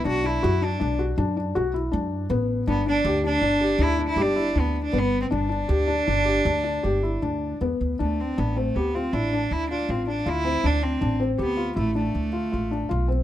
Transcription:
<<
  \new Staff \with { instrumentName = "Cello" } { \time 7/4 \key g \mixolydian \tempo 4 = 159 fis'8 e'4 d'4 r1 r8 | b8 d'4 d'4. \tuplet 3/2 { e'8. r16 e'8 } d'4 \tuplet 3/2 { b4 d'8 b4 c'8 } | d'1. r4 | a8 c'8 b8 a8 b8 c'8 d'4 e'8 d'8 c'8 d'8 e'4 |
d'8 c'4 r8 b4 a8 a2. r8 | }
  \new Staff \with { instrumentName = "Felt piano" } { \time 7/4 \key g \mixolydian d'8 d'8 fis'8 d'8 d'8 fis'8 d'8 d'8 fis'8 e'8 d'4 b4 | d'8 d'8 g'8 d'8 d'8 g'8 d'8 d'8 g'8 e'8 d'4 b4 | d'8 d'8 g'8 d'8 d'8 g'8 d'8 d'8 g'8 e'8 d'4 b4 | d'4 d'8 c'8 g'8 f'8 e'8 d'4 f'8 f'8 d'8 f'8 c'8 |
d'4 d'8 c'8 g'8 f'8 e'8 d'4 f'8 f'8 d'8 f'8 c'8 | }
  \new Staff \with { instrumentName = "Upright bass" } { \clef bass \time 7/4 \key g \mixolydian b,,4 fis,4 b,,4 fis,4 b,,4 fis,4 a,,4 | g,,4 d,4 g,,4 d,4 g,,4 d,4 g,,4 | g,,4 d,4 g,,4 d,4 g,,4 d,4 e,8 d,8 | d,4 a,,4 d,4 a,,4 d,4 a,,4 d,4 |
d,4 a,,4 d,4 a,,4 d,4 a,,4 b,,4 | }
>>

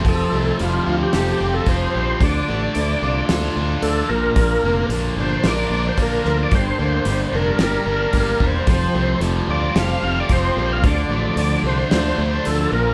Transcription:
<<
  \new Staff \with { instrumentName = "Tonewheel organ" } { \time 4/4 \key f \mixolydian \tempo 4 = 111 a'4 f'8. g'4 a'16 c''4 | d''2 r4 a'8 bes'8~ | bes'4 r8 c''8 d''8. c''16 bes'8. d''16 | c''4. bes'8 bes'4 bes'8 c''8~ |
c''4 r8 d''8 f''8. d''16 c''8. f''16 | d''4. c''8 c''4 a'8 bes'8 | }
  \new Staff \with { instrumentName = "Twelve-string acoustic guitar" } { \time 4/4 \key f \mixolydian <f a c' f' g'>8 <c' f' g'>8 <a c' f' g'>8 <c' f' g'>8 <f a c' f' g'>8 <c' f' g'>8 <a c' f' g'>8 <c' f' g'>8 | <d f d' f' a'>8 <d' a'>8 <f d' f' a'>8 <d' f' a'>8 <d f d' f' a'>8 <d' f' a'>8 <f d' f' a'>8 <f bes d' bes'>8 | <bes, d f bes d' bes'>8 <f bes d' bes'>8 <f bes d' bes'>8 <f bes d' bes'>8 <bes, d f bes d' bes'>8 <bes d'>8 <f bes d'>8 <f bes d' bes'>8 | <g, d g bes d' bes'>8 <g bes d' bes'>8 <g bes d' bes'>8 <g bes d' bes'>8 <g, d g bes d' bes'>8 <g bes d' bes'>8 <g bes d' bes'>8 <g bes d' bes'>8 |
<f g c' f' a'>8 <c' f' a'>8 <g c' f' a'>8 <c' f' a'>8 <f g c' f' a'>8 <c' f' a'>8 <g c' f' a'>8 <c' f' a'>8 | <d f d' f' a'>8 <d' f' a'>8 <f d' f' a'>8 <d' f' a'>8 <d f d' f' a'>8 <d' f' a'>8 <f d' f' a'>8 <f bes d' bes'>8 | }
  \new Staff \with { instrumentName = "Overdriven electric guitar" } { \time 4/4 \key f \mixolydian f8 c'8 g8 f'8 a'8 f'8 c'8 g8 | d8 d'8 a8 f'8 a'8 f'8 d'8 bes,8 | bes,8 bes8 f8 d'8 bes'8 d'8 bes8 f8 | g,8 bes8 g8 d'8 bes'8 d'8 bes8 g8 |
f8 c'8 g8 f'8 a'8 f'8 c'8 g8 | d8 f8 d8 a8 d'8 a8 f8 bes,8 | }
  \new Staff \with { instrumentName = "Distorted electric guitar" } { \time 4/4 \key f \mixolydian f8 a8 f8 c'8 g'8 c'8 f8 c'8 | d8 a8 d8 d'8 f'8 d'8 d8 bes,8 | bes,8 d8 d8 d'8 f'8 d'8 d8 d'8 | g,8 d8 g8 d'8 g'8 d'8 g8 d'8 |
f8 a8 f8 c'8 g'8 c'8 f8 c'8 | d8 a8 d8 d'8 f'8 d'8 d8 bes,8 | }
  \new Staff \with { instrumentName = "Fingered electric bass" } { \clef bass \time 4/4 \key f \mixolydian f,,8 c,8 f,,8 d,8 f,,8 f,,8 f,,8 bes,,8 | d,8 a,,8 d,8 c,8 d,8 d,8 d,8 bes,,8 | bes,,8 f,,8 bes,,8 g,,8 bes,,8 bes,,8 bes,,8 d,8 | g,,8 d,8 g,,8 f,,8 g,,8 g,,8 g,,8 e,,8 |
f,,8 c,8 f,,8 d,8 f,,8 f,,8 f,,8 bes,,8 | d,8 a,,8 d,8 c,8 d,8 d,8 d,8 bes,,8 | }
  \new DrumStaff \with { instrumentName = "Drums" } \drummode { \time 4/4 <hho bd>4 hho4 <hho sn>4 <hho bd>4 | <hho bd>4 hho4 <hho sn>4 hho4 | <hho bd>4 hho4 <hho sn>4 <hho bd>8 sn8 | <hho bd>4 hho4 <hho sn>4 <hho bd>8 bd8 |
<hho bd>4 hho4 <hho sn>4 <hho bd>4 | <hho bd>4 hho4 <hho sn>4 hho4 | }
>>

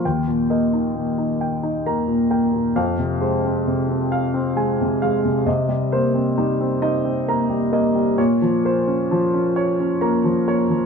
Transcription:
<<
  \new Staff \with { instrumentName = "Grand piano" } { \time 6/8 \key f \minor \tempo 4. = 44 g''8 ees''8 bes,8 g''8 bes''8 g''8 | f''8 c''8 c8 f''8 aes''8 f''8 | ees''8 c''8 g8 ees''8 bes''8 ees''8 | des''8 c''8 f8 des''8 bes''8 des''8 | }
  \new Staff \with { instrumentName = "Grand piano" } { \time 6/8 \key f \minor ees,16 bes,16 bes16 ees'8 ees'8 ees'16 bes16 bes,16 bes16 bes,16 | f,16 c16 aes16 c'8 c'8 c'16 aes16 c16 aes16 c16 | c16 g16 bes16 c'16 ees'16 c'16 ees'16 c'16 bes16 g16 bes16 g16 | bes,16 f16 bes16 des'8 des'8 des'16 bes16 f16 bes16 f16 | }
>>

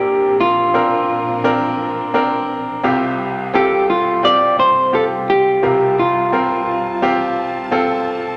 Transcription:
<<
  \new Staff \with { instrumentName = "Clean electric guitar" } { \time 4/4 \key bes \lydian \tempo 4 = 86 g'8 f'2. r8 | r4 g'8 f'8 d''8 c''8 a'8 g'8~ | g'8 f'2. r8 | }
  \new Staff \with { instrumentName = "Grand piano" } { \time 4/4 \key bes \lydian <c' d' bes'>4 <c' d' bes'>4 <c' d' bes'>4 <c' d' bes'>4 | <c' f' g'>4 <c' f' a'>4 <c' f' g'>4 <c' f' g'>4 | <c' f' bes'>4 <c' f' bes'>4 <c' f' g'>4 <c' f' a'>4 | }
  \new Staff \with { instrumentName = "Grand piano" } { \clef bass \time 4/4 \key bes \lydian <bes,, bes,>2.~ <bes,, bes,>8 r8 | <c, c>1 | <c, c>1 | }
  \new Staff \with { instrumentName = "String section" } { \time 4/4 \key bes \lydian << { bes'1 | g'1 | a''1 | } \\ { <bes, f c' d'>1 | <c, c g f'>1~ | <c, c g f'>1 | } >> }
>>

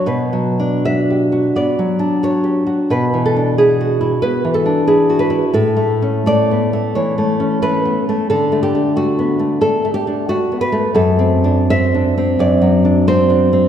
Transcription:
\new Staff \with { instrumentName = "Nylon-string guitar" } { \time 4/4 \key d \major \tempo 4 = 90 << { b'4 e''4 d''4 cis''4 | b'8 a'8 gis'4 b'8 a'8 gis'8 b'8 | a'4 d''4 cis''4 b'4 | a'8 g'8 fis'4 a'8 g'8 fis'8 b'8 |
\key d \mixolydian a'4 e''4 d''4 c''4 | } \\ { \tuplet 3/2 { b,8 fis8 d'8 fis'8 g'8 fis'8 b8 fis8 d'8 fis'8 g'8 fis'8 } | \tuplet 3/2 { b,8 e8 d'8 e'8 fis'8 e'8 b8 e8 d'8 e'8 fis'8 e'8 } | \tuplet 3/2 { a,8 a8 cis'8 a8 b8 a8 e8 a8 cis'8 a8 b8 a8 } | \tuplet 3/2 { d8 a8 d'8 a8 b8 a8 d'8 a8 d'8 a8 b8 a8 } |
\tuplet 3/2 { fis,8 c'8 d'8 c'8 d'8 c'8 fis,8 fis8 d'8 c'8 d'8 c'8 } | } >> }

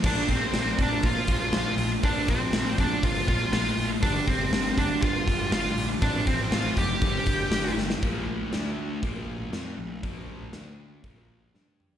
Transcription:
<<
  \new Staff \with { instrumentName = "Lead electric guitar" } { \time 4/4 \key bes \major \tempo 4 = 120 d''8 c''8 c''8 d''8 f''8 f''8 f''8. r16 | d''8 c''4 d''8 f''8 f''8 f''8. r16 | d''8 c''4 d''8 f''4 f''8. r16 | d''8 c''8 f''8 g''2 r8 |
r1 | r1 | }
  \new Staff \with { instrumentName = "Lead electric guitar" } { \time 4/4 \key bes \major d'8 c'8 c'8 d'8 f'8 f'8 f'8. r16 | d'8 c'4 d'8 f'8 f'8 f'8. r16 | d'8 c'4 d'8 f'4 f'8. r16 | d'8 c'8 f'8 g'2 r8 |
r1 | r1 | }
  \new Staff \with { instrumentName = "Overdriven electric guitar" } { \clef bass \time 4/4 \key bes \major <bes, f bes>1 | <bes, f bes>1 | <g, d g>1 | <f, c f>2 <g, d g>2 |
<bes, f bes>4 <d a d'>4 <bes, f bes>4 <f c' f'>8 <bes, f>8 | <bes, f bes>4 <d a d'>4 <bes, f bes>4 <g d' g'>4 | }
  \new Staff \with { instrumentName = "Overdriven electric guitar" } { \clef bass \time 4/4 \key bes \major <bes, f bes>2~ <bes, f bes>8 <bes, f bes>8 <bes, f bes>4 | <bes, f bes>2~ <bes, f bes>8 <bes, f bes>8 <bes, f bes>4 | <g, d g>2~ <g, d g>8 <g, d g>8 <g, d g>4 | <f, c f>2 <g, d g>2 |
<bes, f bes>4 <d a d'>4 <bes, f bes>4 <f c' f'>8 <bes, f>8 | <bes, f bes>4 <d a d'>4 <bes, f bes>4 <g d' g'>4 | }
  \new Staff \with { instrumentName = "Picked electric bass" } { \clef bass \time 4/4 \key bes \major bes,,8 bes,,8 bes,,8 bes,,8 bes,8 bes,,8 bes,,8 bes,,8 | bes,,8 bes,,8 bes,,8 bes,,8 g,,8 bes,,8 bes,,8 bes,,8 | g,,8 g,,8 g,,8 g,,8 g,8 g,,8 g,,8 bes,,8 | a,,8 a,,8 a,,8 fis,,8 g,,8 g,,8 g,,8 g,,8 |
bes,,4 d,4 bes,,4 f,8 bes,,8 | bes,,4 d,4 bes,,4 g,4 | }
  \new DrumStaff \with { instrumentName = "Drums" } \drummode { \time 4/4 <cymc bd>8 <hho bd>8 <hho sn>8 <hho bd>8 <hho bd>8 <hho bd>8 <hho sn>8 hho8 | <hho bd>8 <hho bd>8 <hho sn>8 <hho bd>8 <hho bd>8 <hho bd>8 <hho sn>8 hho8 | <hho bd>8 <hho bd>8 <hho sn>8 <hho bd>8 <hho bd>8 <hho bd>8 <hho sn>8 hho8 | <hho bd>8 <hho bd>8 <hho sn>8 <hho bd>8 <hho bd>8 <hho bd>8 <hho sn>8 sn16 sn16 |
<hho bd>4 <hho sn>4 <hho bd>4 <hho sn>4 | <hho bd>4 <hho sn>4 <hho bd>4 sn16 tommh16 toml16 tomfh16 | }
>>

